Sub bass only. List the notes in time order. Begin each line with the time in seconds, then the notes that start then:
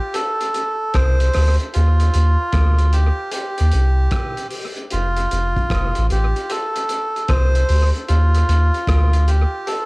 0.95 C2
1.36 D2
1.76 D#2
2.15 D#2
2.54 D2
3.60 D#2
3.74 C2
4.93 F1
5.32 F1
5.71 F1
5.98 A1
6.11 A1
7.29 C2
7.69 D2
8.09 D#2
8.49 D#2
8.88 D2